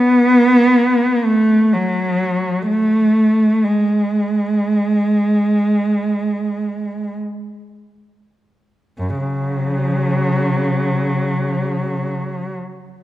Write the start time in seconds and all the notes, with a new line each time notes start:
Already playing: B3
1.24 A3
1.74 F#3
2.68 A3
3.65 G#3
8.98 F#2
9.19 C#3 F#3